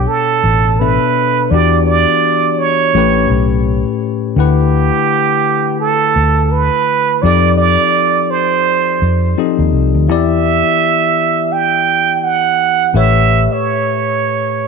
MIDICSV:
0, 0, Header, 1, 4, 480
1, 0, Start_track
1, 0, Tempo, 714286
1, 1013, Time_signature, 4, 2, 24, 8
1, 9862, End_track
2, 0, Start_track
2, 0, Title_t, "Muted trumpet"
2, 0, Program_c, 0, 59
2, 50, Note_on_c, 0, 69, 105
2, 536, Note_on_c, 0, 71, 96
2, 546, Note_off_c, 0, 69, 0
2, 1014, Note_on_c, 0, 74, 107
2, 1024, Note_off_c, 0, 71, 0
2, 1245, Note_off_c, 0, 74, 0
2, 1249, Note_on_c, 0, 74, 109
2, 1737, Note_on_c, 0, 73, 103
2, 1747, Note_off_c, 0, 74, 0
2, 2455, Note_off_c, 0, 73, 0
2, 2940, Note_on_c, 0, 67, 101
2, 3870, Note_off_c, 0, 67, 0
2, 3899, Note_on_c, 0, 69, 105
2, 4376, Note_on_c, 0, 71, 100
2, 4386, Note_off_c, 0, 69, 0
2, 4854, Note_on_c, 0, 74, 121
2, 4864, Note_off_c, 0, 71, 0
2, 5087, Note_off_c, 0, 74, 0
2, 5091, Note_on_c, 0, 74, 108
2, 5580, Note_on_c, 0, 72, 98
2, 5590, Note_off_c, 0, 74, 0
2, 6297, Note_off_c, 0, 72, 0
2, 6779, Note_on_c, 0, 76, 107
2, 7744, Note_on_c, 0, 79, 110
2, 7754, Note_off_c, 0, 76, 0
2, 8223, Note_on_c, 0, 78, 98
2, 8233, Note_off_c, 0, 79, 0
2, 8709, Note_on_c, 0, 76, 113
2, 8719, Note_off_c, 0, 78, 0
2, 9095, Note_on_c, 0, 73, 78
2, 9105, Note_off_c, 0, 76, 0
2, 9862, Note_off_c, 0, 73, 0
2, 9862, End_track
3, 0, Start_track
3, 0, Title_t, "Tine electric piano"
3, 0, Program_c, 1, 4
3, 0, Control_c, 1, 64, 127
3, 0, Note_on_c, 1, 47, 62
3, 0, Note_on_c, 1, 59, 57
3, 0, Note_on_c, 1, 62, 55
3, 0, Note_on_c, 1, 69, 57
3, 0, Note_on_c, 1, 73, 71
3, 508, Note_off_c, 1, 47, 0
3, 510, Note_off_c, 1, 59, 0
3, 514, Note_off_c, 1, 62, 0
3, 516, Note_off_c, 1, 69, 0
3, 519, Note_off_c, 1, 73, 0
3, 539, Note_on_c, 1, 47, 49
3, 543, Note_on_c, 1, 59, 47
3, 545, Note_on_c, 1, 62, 45
3, 547, Note_on_c, 1, 69, 45
3, 551, Note_on_c, 1, 76, 51
3, 1012, Note_off_c, 1, 59, 0
3, 1013, Note_on_c, 1, 52, 63
3, 1016, Note_off_c, 1, 47, 0
3, 1019, Note_off_c, 1, 62, 0
3, 1020, Note_off_c, 1, 69, 0
3, 1020, Note_on_c, 1, 59, 53
3, 1022, Note_off_c, 1, 76, 0
3, 1022, Control_c, 1, 64, 0
3, 1026, Note_on_c, 1, 62, 53
3, 1031, Note_on_c, 1, 66, 59
3, 1037, Note_on_c, 1, 67, 69
3, 1139, Control_c, 1, 64, 127
3, 1954, Note_off_c, 1, 52, 0
3, 1958, Note_off_c, 1, 59, 0
3, 1960, Note_off_c, 1, 62, 0
3, 1963, Note_off_c, 1, 66, 0
3, 1966, Note_off_c, 1, 67, 0
3, 1977, Note_on_c, 1, 45, 69
3, 1981, Note_on_c, 1, 57, 63
3, 1982, Control_c, 1, 64, 0
3, 1988, Note_on_c, 1, 61, 64
3, 1993, Note_on_c, 1, 67, 64
3, 2000, Note_on_c, 1, 71, 74
3, 2084, Control_c, 1, 64, 127
3, 2916, Note_off_c, 1, 45, 0
3, 2918, Note_off_c, 1, 57, 0
3, 2922, Note_off_c, 1, 61, 0
3, 2924, Note_off_c, 1, 67, 0
3, 2928, Note_off_c, 1, 71, 0
3, 2933, Note_on_c, 1, 50, 60
3, 2938, Note_on_c, 1, 57, 58
3, 2943, Control_c, 1, 64, 0
3, 2945, Note_on_c, 1, 64, 59
3, 2951, Note_on_c, 1, 78, 57
3, 2956, Note_on_c, 1, 71, 71
3, 3065, Control_c, 1, 64, 127
3, 4826, Note_off_c, 1, 50, 0
3, 4829, Note_off_c, 1, 57, 0
3, 4832, Note_off_c, 1, 64, 0
3, 4835, Note_off_c, 1, 78, 0
3, 4838, Note_off_c, 1, 71, 0
3, 4858, Note_on_c, 1, 53, 64
3, 4860, Note_on_c, 1, 60, 55
3, 4862, Control_c, 1, 64, 0
3, 4865, Note_on_c, 1, 63, 54
3, 4871, Note_on_c, 1, 67, 62
3, 4876, Note_on_c, 1, 69, 54
3, 4881, Note_on_c, 1, 74, 71
3, 4968, Control_c, 1, 64, 127
3, 6269, Note_off_c, 1, 53, 0
3, 6270, Note_off_c, 1, 60, 0
3, 6272, Note_off_c, 1, 63, 0
3, 6275, Note_off_c, 1, 67, 0
3, 6278, Note_off_c, 1, 69, 0
3, 6280, Note_off_c, 1, 74, 0
3, 6300, Note_on_c, 1, 53, 52
3, 6302, Note_on_c, 1, 60, 53
3, 6304, Note_on_c, 1, 63, 54
3, 6307, Note_on_c, 1, 67, 48
3, 6308, Note_on_c, 1, 69, 49
3, 6313, Note_on_c, 1, 75, 60
3, 6774, Note_on_c, 1, 52, 56
3, 6777, Note_off_c, 1, 53, 0
3, 6778, Note_off_c, 1, 60, 0
3, 6779, Note_off_c, 1, 63, 0
3, 6779, Note_on_c, 1, 59, 55
3, 6780, Note_off_c, 1, 67, 0
3, 6780, Note_off_c, 1, 69, 0
3, 6783, Note_off_c, 1, 75, 0
3, 6783, Control_c, 1, 64, 0
3, 6783, Note_on_c, 1, 64, 62
3, 6790, Note_on_c, 1, 67, 54
3, 6798, Note_on_c, 1, 74, 77
3, 6914, Control_c, 1, 64, 127
3, 8667, Note_off_c, 1, 52, 0
3, 8669, Note_off_c, 1, 59, 0
3, 8671, Note_off_c, 1, 64, 0
3, 8675, Note_off_c, 1, 67, 0
3, 8679, Note_off_c, 1, 74, 0
3, 8692, Note_on_c, 1, 45, 58
3, 8697, Note_on_c, 1, 57, 60
3, 8701, Control_c, 1, 64, 0
3, 8703, Note_on_c, 1, 67, 57
3, 8711, Note_on_c, 1, 71, 59
3, 8715, Note_on_c, 1, 73, 67
3, 8828, Control_c, 1, 64, 127
3, 9862, Note_off_c, 1, 45, 0
3, 9862, Note_off_c, 1, 57, 0
3, 9862, Note_off_c, 1, 67, 0
3, 9862, Note_off_c, 1, 71, 0
3, 9862, Note_off_c, 1, 73, 0
3, 9862, End_track
4, 0, Start_track
4, 0, Title_t, "Fingered electric bass"
4, 0, Program_c, 2, 33
4, 293, Note_on_c, 2, 33, 88
4, 649, Note_off_c, 2, 33, 0
4, 1016, Note_on_c, 2, 40, 101
4, 1371, Note_off_c, 2, 40, 0
4, 1980, Note_on_c, 2, 33, 112
4, 2195, Note_off_c, 2, 33, 0
4, 2217, Note_on_c, 2, 35, 88
4, 2571, Note_off_c, 2, 35, 0
4, 2932, Note_on_c, 2, 38, 96
4, 3289, Note_off_c, 2, 38, 0
4, 4139, Note_on_c, 2, 38, 76
4, 4492, Note_off_c, 2, 38, 0
4, 4862, Note_on_c, 2, 41, 97
4, 5213, Note_off_c, 2, 41, 0
4, 6060, Note_on_c, 2, 41, 81
4, 6275, Note_off_c, 2, 41, 0
4, 6443, Note_on_c, 2, 39, 94
4, 6528, Note_off_c, 2, 39, 0
4, 6539, Note_on_c, 2, 36, 85
4, 6666, Note_off_c, 2, 36, 0
4, 6682, Note_on_c, 2, 38, 86
4, 6780, Note_off_c, 2, 38, 0
4, 6780, Note_on_c, 2, 40, 105
4, 7133, Note_off_c, 2, 40, 0
4, 8697, Note_on_c, 2, 33, 110
4, 9051, Note_off_c, 2, 33, 0
4, 9862, End_track
0, 0, End_of_file